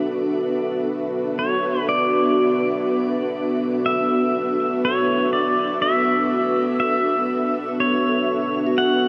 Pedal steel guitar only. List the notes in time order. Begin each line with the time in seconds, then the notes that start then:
Already playing: D5
1.39 C#5
1.89 D5
3.86 E5
4.85 C#5
5.33 D5
5.82 E5
6.80 E5
7.80 C#5
8.78 F#5